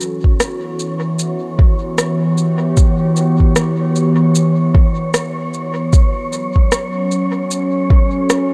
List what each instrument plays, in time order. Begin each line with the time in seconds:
Already playing: ambient pad E3 B3 C#4 F#4 A4, synth texture C#5
0.01 shaker
0.24 kick
0.40 cross-stick, shaker
0.80 shaker
1.19 shaker
1.56 ambient pad G4, kick
1.98 cross-stick, shaker
2.38 shaker
2.77 kick, shaker
3.16 shaker
3.40 kick
3.56 cross-stick, shaker
3.96 shaker
4.35 shaker
4.75 kick
5.14 cross-stick, shaker
5.54 shaker
5.93 ambient pad F#3, kick, shaker
6.20 ambient pad C#4
6.33 shaker
6.56 kick
6.72 cross-stick, shaker
7.11 shaker
7.36 ambient pad A4
7.51 shaker
7.90 kick
8.30 cross-stick, shaker